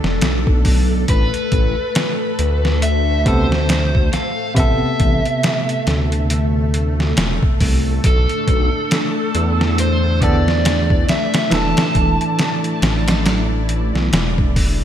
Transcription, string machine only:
0, 0, Header, 1, 2, 480
1, 0, Start_track
1, 0, Key_signature, 0, "minor"
1, 0, Tempo, 869565
1, 600, Time_signature, 4, 2, 24, 8
1, 8192, End_track
2, 0, Start_track
2, 0, Title_t, "String machine"
2, 0, Program_c, 0, 50
2, 0, Note_on_c, 0, 57, 82
2, 0, Note_on_c, 0, 62, 75
2, 0, Note_on_c, 0, 69, 93
2, 579, Note_off_c, 0, 62, 0
2, 580, Note_off_c, 0, 57, 0
2, 599, Note_on_c, 0, 57, 85
2, 4420, Note_off_c, 0, 69, 0
2, 4438, Note_on_c, 0, 62, 72
2, 4442, Note_on_c, 0, 69, 95
2, 6340, Note_off_c, 0, 62, 0
2, 6341, Note_off_c, 0, 69, 0
2, 6355, Note_on_c, 0, 74, 90
2, 6357, Note_on_c, 0, 64, 81
2, 8192, Note_off_c, 0, 57, 0
2, 8192, Note_off_c, 0, 64, 0
2, 8192, Note_off_c, 0, 74, 0
2, 8192, End_track
0, 0, End_of_file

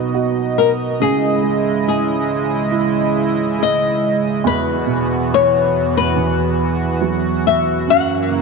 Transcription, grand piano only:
0, 0, Header, 1, 2, 480
1, 0, Start_track
1, 0, Tempo, 857143
1, 566, Time_signature, 4, 2, 24, 8
1, 4714, End_track
2, 0, Start_track
2, 0, Title_t, "Grand piano"
2, 0, Program_c, 0, 0
2, 0, Control_c, 0, 64, 127
2, 0, Note_on_c, 0, 47, 50
2, 0, Note_on_c, 0, 54, 40
2, 0, Note_on_c, 0, 63, 47
2, 80, Note_on_c, 0, 66, 42
2, 543, Note_off_c, 0, 47, 0
2, 544, Note_off_c, 0, 63, 0
2, 548, Note_off_c, 0, 66, 0
2, 559, Note_on_c, 0, 49, 50
2, 574, Control_c, 0, 64, 0
2, 579, Note_off_c, 0, 54, 0
2, 663, Control_c, 0, 64, 127
2, 802, Note_on_c, 0, 56, 39
2, 1523, Note_on_c, 0, 64, 43
2, 1742, Note_off_c, 0, 56, 0
2, 2010, Note_on_c, 0, 56, 44
2, 2460, Note_off_c, 0, 49, 0
2, 2462, Note_off_c, 0, 64, 0
2, 2474, Note_off_c, 0, 56, 0
2, 2488, Note_on_c, 0, 40, 55
2, 2494, Control_c, 0, 64, 0
2, 2605, Control_c, 0, 64, 127
2, 2724, Note_on_c, 0, 47, 39
2, 3450, Note_on_c, 0, 52, 43
2, 3663, Note_off_c, 0, 47, 0
2, 3927, Note_on_c, 0, 54, 43
2, 4384, Note_off_c, 0, 40, 0
2, 4385, Note_off_c, 0, 52, 0
2, 4392, Note_off_c, 0, 54, 0
2, 4409, Note_on_c, 0, 42, 57
2, 4414, Control_c, 0, 64, 0
2, 4502, Control_c, 0, 64, 127
2, 4650, Note_on_c, 0, 49, 41
2, 4714, Note_off_c, 0, 42, 0
2, 4714, Note_off_c, 0, 49, 0
2, 4714, End_track
0, 0, End_of_file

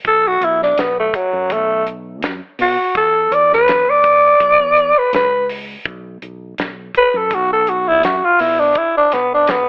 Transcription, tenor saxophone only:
0, 0, Header, 1, 2, 480
1, 0, Start_track
1, 0, Key_signature, 2, "minor"
1, 0, Tempo, 725514
1, 32, Time_signature, 4, 2, 24, 8
1, 6410, End_track
2, 0, Start_track
2, 0, Title_t, "Tenor saxophone"
2, 0, Program_c, 0, 66
2, 49, Note_on_c, 0, 69, 93
2, 181, Note_on_c, 0, 66, 85
2, 191, Note_off_c, 0, 69, 0
2, 292, Note_on_c, 0, 64, 83
2, 302, Note_off_c, 0, 66, 0
2, 402, Note_off_c, 0, 64, 0
2, 417, Note_on_c, 0, 62, 80
2, 527, Note_on_c, 0, 59, 73
2, 537, Note_off_c, 0, 62, 0
2, 640, Note_off_c, 0, 59, 0
2, 658, Note_on_c, 0, 57, 84
2, 766, Note_on_c, 0, 54, 84
2, 776, Note_off_c, 0, 57, 0
2, 1009, Note_on_c, 0, 57, 101
2, 1019, Note_off_c, 0, 54, 0
2, 1234, Note_off_c, 0, 57, 0
2, 1730, Note_on_c, 0, 66, 82
2, 1955, Note_off_c, 0, 66, 0
2, 1965, Note_on_c, 0, 69, 81
2, 2207, Note_on_c, 0, 74, 81
2, 2217, Note_off_c, 0, 69, 0
2, 2320, Note_off_c, 0, 74, 0
2, 2341, Note_on_c, 0, 71, 96
2, 2578, Note_on_c, 0, 74, 96
2, 2588, Note_off_c, 0, 71, 0
2, 3297, Note_on_c, 0, 71, 87
2, 3307, Note_off_c, 0, 74, 0
2, 3394, Note_off_c, 0, 71, 0
2, 3409, Note_on_c, 0, 71, 84
2, 3635, Note_off_c, 0, 71, 0
2, 4615, Note_on_c, 0, 71, 96
2, 4743, Note_on_c, 0, 69, 80
2, 4753, Note_off_c, 0, 71, 0
2, 4858, Note_on_c, 0, 66, 94
2, 4868, Note_off_c, 0, 69, 0
2, 4966, Note_off_c, 0, 66, 0
2, 4980, Note_on_c, 0, 69, 88
2, 5088, Note_on_c, 0, 66, 84
2, 5098, Note_off_c, 0, 69, 0
2, 5215, Note_on_c, 0, 64, 106
2, 5225, Note_off_c, 0, 66, 0
2, 5313, Note_off_c, 0, 64, 0
2, 5323, Note_on_c, 0, 66, 86
2, 5458, Note_on_c, 0, 65, 86
2, 5468, Note_off_c, 0, 66, 0
2, 5560, Note_on_c, 0, 64, 81
2, 5570, Note_off_c, 0, 65, 0
2, 5689, Note_on_c, 0, 62, 91
2, 5699, Note_off_c, 0, 64, 0
2, 5809, Note_on_c, 0, 64, 84
2, 5819, Note_off_c, 0, 62, 0
2, 5921, Note_off_c, 0, 64, 0
2, 5935, Note_on_c, 0, 62, 88
2, 6042, Note_on_c, 0, 59, 80
2, 6052, Note_off_c, 0, 62, 0
2, 6157, Note_off_c, 0, 59, 0
2, 6179, Note_on_c, 0, 62, 87
2, 6286, Note_on_c, 0, 59, 90
2, 6296, Note_off_c, 0, 62, 0
2, 6410, Note_off_c, 0, 59, 0
2, 6410, End_track
0, 0, End_of_file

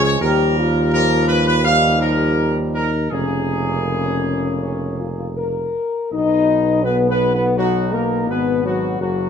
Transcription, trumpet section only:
0, 0, Header, 1, 2, 480
1, 0, Start_track
1, 0, Tempo, 720288
1, 139, Time_signature, 4, 2, 24, 8
1, 1580, Tempo, 749064
1, 3980, Tempo, 720288
1, 6098, End_track
2, 0, Start_track
2, 0, Title_t, "Trumpet section"
2, 0, Program_c, 0, 61
2, 29, Note_on_c, 0, 73, 109
2, 135, Note_off_c, 0, 73, 0
2, 145, Note_on_c, 0, 70, 103
2, 592, Note_off_c, 0, 70, 0
2, 621, Note_on_c, 0, 70, 116
2, 841, Note_off_c, 0, 70, 0
2, 856, Note_on_c, 0, 71, 106
2, 968, Note_off_c, 0, 71, 0
2, 977, Note_on_c, 0, 71, 103
2, 1088, Note_off_c, 0, 71, 0
2, 1094, Note_on_c, 0, 77, 115
2, 1320, Note_off_c, 0, 77, 0
2, 1333, Note_on_c, 0, 70, 95
2, 1709, Note_off_c, 0, 70, 0
2, 1818, Note_on_c, 0, 70, 92
2, 2040, Note_off_c, 0, 70, 0
2, 2056, Note_on_c, 0, 68, 87
2, 3496, Note_off_c, 0, 68, 0
2, 3979, Note_on_c, 0, 75, 75
2, 4438, Note_off_c, 0, 75, 0
2, 4461, Note_on_c, 0, 71, 85
2, 4534, Note_off_c, 0, 71, 0
2, 4633, Note_on_c, 0, 71, 87
2, 4779, Note_off_c, 0, 71, 0
2, 4793, Note_on_c, 0, 71, 75
2, 4864, Note_off_c, 0, 71, 0
2, 4953, Note_on_c, 0, 66, 87
2, 5173, Note_off_c, 0, 66, 0
2, 5196, Note_on_c, 0, 70, 65
2, 5414, Note_off_c, 0, 70, 0
2, 5438, Note_on_c, 0, 71, 71
2, 5654, Note_off_c, 0, 71, 0
2, 5675, Note_on_c, 0, 66, 69
2, 5892, Note_off_c, 0, 66, 0
2, 5911, Note_on_c, 0, 66, 85
2, 6098, Note_off_c, 0, 66, 0
2, 6098, End_track
0, 0, End_of_file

